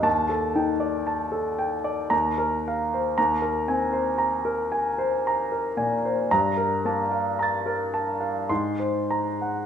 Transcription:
0, 0, Header, 1, 2, 480
1, 0, Start_track
1, 0, Tempo, 1032702
1, 27, Time_signature, 3, 2, 24, 8
1, 1948, Tempo, 1052632
1, 2908, Tempo, 1075269
1, 3388, Tempo, 1127820
1, 3868, Tempo, 1209677
1, 4328, End_track
2, 0, Start_track
2, 0, Title_t, "Grand piano"
2, 0, Program_c, 0, 0
2, 0, Control_c, 0, 64, 127
2, 12, Note_on_c, 0, 39, 59
2, 15, Note_on_c, 0, 81, 67
2, 35, Control_c, 0, 64, 0
2, 116, Control_c, 0, 64, 127
2, 136, Note_on_c, 0, 69, 42
2, 211, Note_off_c, 0, 81, 0
2, 257, Note_on_c, 0, 63, 42
2, 258, Note_on_c, 0, 79, 41
2, 329, Note_off_c, 0, 69, 0
2, 371, Note_on_c, 0, 74, 43
2, 449, Note_off_c, 0, 79, 0
2, 496, Note_on_c, 0, 81, 44
2, 565, Note_off_c, 0, 74, 0
2, 612, Note_on_c, 0, 69, 46
2, 639, Note_off_c, 0, 63, 0
2, 689, Note_off_c, 0, 81, 0
2, 737, Note_on_c, 0, 79, 47
2, 810, Note_off_c, 0, 69, 0
2, 857, Note_on_c, 0, 74, 46
2, 936, Note_off_c, 0, 79, 0
2, 960, Note_off_c, 0, 39, 0
2, 976, Note_on_c, 0, 82, 63
2, 978, Note_on_c, 0, 39, 54
2, 984, Note_off_c, 0, 74, 0
2, 994, Control_c, 0, 64, 0
2, 1062, Control_c, 0, 64, 127
2, 1106, Note_on_c, 0, 70, 44
2, 1181, Note_off_c, 0, 82, 0
2, 1245, Note_on_c, 0, 77, 48
2, 1305, Note_off_c, 0, 70, 0
2, 1366, Note_on_c, 0, 72, 40
2, 1431, Note_off_c, 0, 77, 0
2, 1454, Note_off_c, 0, 39, 0
2, 1476, Note_on_c, 0, 82, 65
2, 1479, Note_off_c, 0, 72, 0
2, 1479, Note_on_c, 0, 39, 57
2, 1481, Control_c, 0, 64, 0
2, 1542, Control_c, 0, 64, 127
2, 1589, Note_on_c, 0, 70, 43
2, 1662, Note_off_c, 0, 82, 0
2, 1711, Note_on_c, 0, 60, 40
2, 1712, Note_on_c, 0, 80, 45
2, 1778, Note_off_c, 0, 70, 0
2, 1825, Note_on_c, 0, 72, 45
2, 1901, Note_off_c, 0, 80, 0
2, 1945, Note_on_c, 0, 82, 49
2, 2019, Note_off_c, 0, 72, 0
2, 2066, Note_on_c, 0, 70, 46
2, 2093, Note_off_c, 0, 60, 0
2, 2138, Note_off_c, 0, 82, 0
2, 2188, Note_on_c, 0, 80, 48
2, 2258, Note_off_c, 0, 70, 0
2, 2310, Note_on_c, 0, 72, 45
2, 2379, Note_off_c, 0, 80, 0
2, 2440, Note_on_c, 0, 82, 47
2, 2498, Note_off_c, 0, 72, 0
2, 2553, Note_on_c, 0, 70, 42
2, 2624, Note_off_c, 0, 82, 0
2, 2668, Note_on_c, 0, 46, 43
2, 2670, Note_on_c, 0, 80, 46
2, 2742, Note_off_c, 0, 70, 0
2, 2797, Note_on_c, 0, 72, 42
2, 2861, Note_off_c, 0, 80, 0
2, 2892, Note_off_c, 0, 39, 0
2, 2909, Note_off_c, 0, 46, 0
2, 2913, Note_off_c, 0, 72, 0
2, 2915, Note_on_c, 0, 82, 67
2, 2916, Control_c, 0, 64, 0
2, 2916, Note_on_c, 0, 43, 54
2, 2998, Control_c, 0, 64, 127
2, 3032, Note_on_c, 0, 70, 43
2, 3103, Note_off_c, 0, 82, 0
2, 3156, Note_on_c, 0, 58, 40
2, 3159, Note_on_c, 0, 81, 44
2, 3221, Note_off_c, 0, 70, 0
2, 3274, Note_on_c, 0, 77, 41
2, 3345, Note_off_c, 0, 81, 0
2, 3397, Note_on_c, 0, 82, 44
2, 3411, Note_on_c, 0, 93, 32
2, 3460, Note_off_c, 0, 77, 0
2, 3511, Note_on_c, 0, 70, 43
2, 3532, Note_off_c, 0, 58, 0
2, 3580, Note_off_c, 0, 82, 0
2, 3629, Note_on_c, 0, 81, 46
2, 3698, Note_off_c, 0, 70, 0
2, 3743, Note_on_c, 0, 77, 41
2, 3820, Note_off_c, 0, 81, 0
2, 3854, Note_off_c, 0, 43, 0
2, 3862, Note_off_c, 0, 93, 0
2, 3866, Note_on_c, 0, 84, 56
2, 3867, Note_off_c, 0, 77, 0
2, 3868, Note_on_c, 0, 44, 50
2, 3873, Control_c, 0, 64, 0
2, 3958, Control_c, 0, 64, 127
2, 3985, Note_on_c, 0, 72, 39
2, 4055, Note_off_c, 0, 84, 0
2, 4108, Note_on_c, 0, 82, 43
2, 4176, Note_off_c, 0, 72, 0
2, 4232, Note_on_c, 0, 78, 39
2, 4301, Note_off_c, 0, 82, 0
2, 4328, Note_off_c, 0, 44, 0
2, 4328, Note_off_c, 0, 78, 0
2, 4328, End_track
0, 0, End_of_file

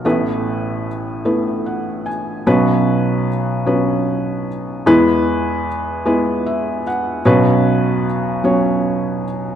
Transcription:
0, 0, Header, 1, 2, 480
1, 0, Start_track
1, 0, Tempo, 803213
1, 29, Time_signature, 6, 3, 24, 8
1, 2909, Tempo, 790514
1, 5754, End_track
2, 0, Start_track
2, 0, Title_t, "Felt piano"
2, 0, Program_c, 0, 0
2, 0, Control_c, 0, 64, 127
2, 29, Note_on_c, 0, 57, 76
2, 31, Note_on_c, 0, 45, 63
2, 32, Note_on_c, 0, 33, 60
2, 33, Note_on_c, 0, 59, 68
2, 34, Note_on_c, 0, 64, 65
2, 34, Note_on_c, 0, 71, 83
2, 37, Control_c, 0, 64, 0
2, 143, Control_c, 0, 64, 127
2, 518, Note_off_c, 0, 57, 0
2, 520, Note_off_c, 0, 59, 0
2, 520, Note_off_c, 0, 64, 0
2, 521, Note_off_c, 0, 71, 0
2, 747, Note_on_c, 0, 59, 53
2, 748, Note_on_c, 0, 57, 55
2, 748, Note_on_c, 0, 64, 57
2, 751, Note_on_c, 0, 71, 60
2, 993, Note_on_c, 0, 78, 49
2, 1216, Note_off_c, 0, 78, 0
2, 1230, Note_on_c, 0, 80, 53
2, 1240, Note_off_c, 0, 57, 0
2, 1240, Note_off_c, 0, 59, 0
2, 1240, Note_off_c, 0, 64, 0
2, 1242, Note_off_c, 0, 71, 0
2, 1449, Note_off_c, 0, 33, 0
2, 1449, Note_off_c, 0, 45, 0
2, 1454, Note_off_c, 0, 80, 0
2, 1474, Note_on_c, 0, 54, 84
2, 1475, Note_on_c, 0, 59, 75
2, 1476, Note_on_c, 0, 35, 67
2, 1476, Note_on_c, 0, 47, 66
2, 1476, Note_on_c, 0, 61, 76
2, 1476, Note_on_c, 0, 71, 90
2, 1478, Control_c, 0, 64, 0
2, 1583, Control_c, 0, 64, 127
2, 1963, Note_off_c, 0, 54, 0
2, 1963, Note_off_c, 0, 59, 0
2, 1963, Note_off_c, 0, 61, 0
2, 1964, Note_off_c, 0, 71, 0
2, 2189, Note_on_c, 0, 54, 66
2, 2189, Note_on_c, 0, 59, 62
2, 2192, Note_on_c, 0, 61, 60
2, 2194, Note_on_c, 0, 71, 70
2, 2678, Note_off_c, 0, 54, 0
2, 2678, Note_off_c, 0, 59, 0
2, 2679, Note_off_c, 0, 61, 0
2, 2680, Note_off_c, 0, 71, 0
2, 2886, Note_off_c, 0, 35, 0
2, 2886, Note_off_c, 0, 47, 0
2, 2905, Note_on_c, 0, 59, 83
2, 2906, Note_on_c, 0, 56, 89
2, 2907, Note_on_c, 0, 40, 72
2, 2909, Note_on_c, 0, 52, 69
2, 2909, Note_on_c, 0, 64, 78
2, 2910, Note_on_c, 0, 71, 107
2, 2917, Control_c, 0, 64, 0
2, 3022, Control_c, 0, 64, 127
2, 3399, Note_off_c, 0, 59, 0
2, 3400, Note_off_c, 0, 56, 0
2, 3401, Note_off_c, 0, 64, 0
2, 3402, Note_off_c, 0, 71, 0
2, 3630, Note_on_c, 0, 56, 69
2, 3631, Note_on_c, 0, 59, 69
2, 3635, Note_on_c, 0, 64, 67
2, 3635, Note_on_c, 0, 71, 77
2, 3879, Note_on_c, 0, 76, 67
2, 4098, Note_off_c, 0, 76, 0
2, 4120, Note_off_c, 0, 56, 0
2, 4121, Note_off_c, 0, 59, 0
2, 4122, Note_off_c, 0, 64, 0
2, 4122, Note_off_c, 0, 71, 0
2, 4126, Note_on_c, 0, 78, 66
2, 4326, Note_off_c, 0, 40, 0
2, 4327, Note_off_c, 0, 52, 0
2, 4342, Note_off_c, 0, 78, 0
2, 4357, Note_on_c, 0, 54, 97
2, 4359, Control_c, 0, 64, 0
2, 4359, Note_on_c, 0, 59, 93
2, 4360, Note_on_c, 0, 35, 73
2, 4361, Note_on_c, 0, 47, 77
2, 4361, Note_on_c, 0, 61, 85
2, 4365, Note_on_c, 0, 71, 101
2, 4450, Control_c, 0, 64, 127
2, 4842, Note_off_c, 0, 54, 0
2, 4843, Note_off_c, 0, 59, 0
2, 4844, Note_off_c, 0, 61, 0
2, 4846, Note_off_c, 0, 71, 0
2, 5076, Note_on_c, 0, 54, 73
2, 5080, Note_on_c, 0, 59, 62
2, 5081, Note_on_c, 0, 61, 65
2, 5081, Note_on_c, 0, 73, 73
2, 5562, Note_off_c, 0, 54, 0
2, 5564, Note_off_c, 0, 59, 0
2, 5564, Note_off_c, 0, 61, 0
2, 5565, Note_off_c, 0, 73, 0
2, 5754, Note_off_c, 0, 35, 0
2, 5754, Note_off_c, 0, 47, 0
2, 5754, End_track
0, 0, End_of_file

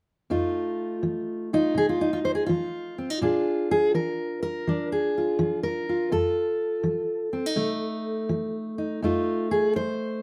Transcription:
0, 0, Header, 1, 2, 480
1, 0, Start_track
1, 0, Tempo, 727273
1, 207, Time_signature, 4, 2, 24, 8
1, 6746, End_track
2, 0, Start_track
2, 0, Title_t, "Steel-string acoustic guitar"
2, 0, Program_c, 0, 25
2, 198, Note_on_c, 0, 41, 74
2, 201, Note_on_c, 0, 57, 47
2, 203, Note_on_c, 0, 63, 51
2, 206, Note_on_c, 0, 65, 49
2, 651, Note_off_c, 0, 41, 0
2, 678, Note_on_c, 0, 53, 57
2, 1005, Note_off_c, 0, 63, 0
2, 1008, Note_off_c, 0, 65, 0
2, 1011, Note_on_c, 0, 65, 47
2, 1015, Note_on_c, 0, 63, 91
2, 1131, Note_off_c, 0, 53, 0
2, 1152, Note_on_c, 0, 48, 62
2, 1169, Note_off_c, 0, 65, 0
2, 1172, Note_on_c, 0, 68, 93
2, 1246, Note_off_c, 0, 68, 0
2, 1249, Note_on_c, 0, 65, 76
2, 1319, Note_off_c, 0, 63, 0
2, 1327, Note_on_c, 0, 63, 77
2, 1397, Note_off_c, 0, 65, 0
2, 1405, Note_on_c, 0, 65, 80
2, 1442, Note_off_c, 0, 65, 0
2, 1483, Note_on_c, 0, 72, 83
2, 1547, Note_off_c, 0, 72, 0
2, 1550, Note_on_c, 0, 68, 79
2, 1607, Note_off_c, 0, 48, 0
2, 1623, Note_off_c, 0, 68, 0
2, 1626, Note_on_c, 0, 65, 82
2, 1645, Note_on_c, 0, 53, 69
2, 1966, Note_off_c, 0, 63, 0
2, 1969, Note_on_c, 0, 60, 46
2, 2046, Note_off_c, 0, 60, 0
2, 2046, Note_on_c, 0, 63, 36
2, 2094, Note_off_c, 0, 53, 0
2, 2115, Note_off_c, 0, 65, 0
2, 2121, Note_off_c, 0, 57, 0
2, 2121, Note_on_c, 0, 46, 75
2, 2124, Note_off_c, 0, 63, 0
2, 2125, Note_on_c, 0, 62, 50
2, 2128, Note_on_c, 0, 65, 51
2, 2131, Note_on_c, 0, 68, 51
2, 2442, Note_off_c, 0, 68, 0
2, 2450, Note_on_c, 0, 68, 92
2, 2572, Note_off_c, 0, 46, 0
2, 2603, Note_on_c, 0, 53, 62
2, 2604, Note_off_c, 0, 68, 0
2, 2606, Note_on_c, 0, 70, 73
2, 2913, Note_off_c, 0, 70, 0
2, 2921, Note_on_c, 0, 70, 88
2, 3053, Note_off_c, 0, 53, 0
2, 3084, Note_off_c, 0, 62, 0
2, 3084, Note_on_c, 0, 53, 63
2, 3093, Note_on_c, 0, 62, 52
2, 3242, Note_off_c, 0, 70, 0
2, 3249, Note_on_c, 0, 68, 76
2, 3413, Note_off_c, 0, 65, 0
2, 3416, Note_on_c, 0, 65, 45
2, 3533, Note_off_c, 0, 53, 0
2, 3556, Note_on_c, 0, 53, 71
2, 3715, Note_off_c, 0, 68, 0
2, 3718, Note_on_c, 0, 70, 81
2, 3886, Note_off_c, 0, 65, 0
2, 3889, Note_on_c, 0, 65, 47
2, 4009, Note_off_c, 0, 53, 0
2, 4030, Note_off_c, 0, 62, 0
2, 4036, Note_on_c, 0, 41, 70
2, 4038, Note_off_c, 0, 70, 0
2, 4041, Note_on_c, 0, 69, 90
2, 4489, Note_off_c, 0, 41, 0
2, 4511, Note_on_c, 0, 53, 61
2, 4834, Note_off_c, 0, 65, 0
2, 4836, Note_on_c, 0, 60, 49
2, 4924, Note_off_c, 0, 60, 0
2, 4924, Note_on_c, 0, 63, 43
2, 4967, Note_off_c, 0, 53, 0
2, 4989, Note_on_c, 0, 48, 63
2, 4992, Note_on_c, 0, 57, 51
2, 5447, Note_off_c, 0, 48, 0
2, 5473, Note_on_c, 0, 53, 65
2, 5788, Note_off_c, 0, 63, 0
2, 5796, Note_on_c, 0, 63, 45
2, 5929, Note_off_c, 0, 53, 0
2, 5940, Note_off_c, 0, 63, 0
2, 5956, Note_on_c, 0, 41, 76
2, 5957, Note_off_c, 0, 57, 0
2, 5962, Note_on_c, 0, 63, 53
2, 5965, Note_off_c, 0, 69, 0
2, 5965, Note_on_c, 0, 57, 52
2, 5971, Note_on_c, 0, 65, 51
2, 6275, Note_off_c, 0, 65, 0
2, 6278, Note_on_c, 0, 68, 82
2, 6412, Note_off_c, 0, 41, 0
2, 6440, Note_off_c, 0, 68, 0
2, 6441, Note_on_c, 0, 53, 63
2, 6443, Note_on_c, 0, 72, 87
2, 6746, Note_off_c, 0, 53, 0
2, 6746, Note_off_c, 0, 57, 0
2, 6746, Note_off_c, 0, 63, 0
2, 6746, Note_off_c, 0, 72, 0
2, 6746, End_track
0, 0, End_of_file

